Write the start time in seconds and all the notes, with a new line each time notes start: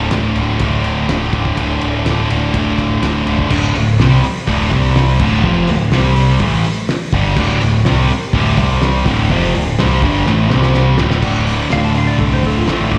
Already playing: D2 A2 D3
0.11 D1 D2 A2, snare, ride
0.16 D3
0.36 D1 D3, ride
0.41 A2
0.59 D1 D2 A2, kick, ride
0.64 D3
0.84 D1, ride
1.09 D1 D2 A2 D3, snare, ride
1.33 D1 D3, kick, ride
1.38 A2
1.45 kick
1.57 D1 D2 A2, kick, ride
1.61 D3
1.81 D1 D3, ride
1.87 A2
2.05 D1 D2 A2 D3, snare, ride
2.30 D1 D3, ride
2.34 A2
2.54 D1 D2 A2, kick, ride
2.58 D3
2.78 D1, kick, ride
3.03 D1 D2 A2 D3, snare, ride
3.26 D1 A2 D3, ride
3.39 kick
3.49 D1 D2 A2 D3, kick, crash
3.75 D1 D2 A2, open hi-hat
3.99 C2 C3 G3 C4, snare, open hi-hat
4.23 muted picked electric bass stroke, muted distorted electric guitar stroke, open hi-hat
4.47 D1 D2 A2 D3, kick, open hi-hat
4.71 C2 C3 G3 C4, kick, open hi-hat
4.96 snare, open hi-hat
5.19 D1 D2 A2 D3, kick, crash
5.43 F1 F2 C3 F3, kick
5.67 D1 D2 A2, open hi-hat
5.92 C2 C3 G3 C4, snare, open hi-hat
6.16 open hi-hat
6.39 A1 A2 E3 A3, kick, open hi-hat
6.64 open hi-hat
6.89 snare, open hi-hat
7.12 G1 G2 D3 G3, kick, open hi-hat
7.36 D1 D2 A2 D3, kick, crash
7.61 D1 D2 A2, open hi-hat
7.85 C2 C3 G3 C4, snare, open hi-hat
8.09 muted picked electric bass stroke, muted distorted electric guitar stroke, open hi-hat
8.33 D1 D2 A2 D3, kick, open hi-hat
8.57 C2 C3 G3 C4, kick, open hi-hat
8.81 snare, open hi-hat
9.05 D1 D2 A2 D3, kick, open hi-hat
9.30 F1 F2 C3 F3, kick, open hi-hat
9.55 D1 D2 A2, open hi-hat
9.78 C2 C3 G3 C4, snare, open hi-hat
10.02 G1 G2 D3 G3, kick, open hi-hat
10.26 A1 A2 E3 A3, snare
10.50 C2 C3 G3 C4, snare
10.63 snare
10.74 snare
10.98 D1 D2 A2 D3, snare
11.11 snare
11.22 D1 D2 A2 D3, kick, crash
11.45 A2 D3, open hi-hat
11.70 D1 D2 A2 F5, snare, open hi-hat
11.75 D3
11.85 A5
11.94 A2 D3 F5, open hi-hat
12.07 D5
12.19 C2 A4, kick, open hi-hat
12.33 C5
12.43 D1 A4, kick, open hi-hat
12.58 F4
12.67 A1 D2 A2 D3 A4, snare, open hi-hat
12.90 A1 D3, kick, open hi-hat
12.94 A2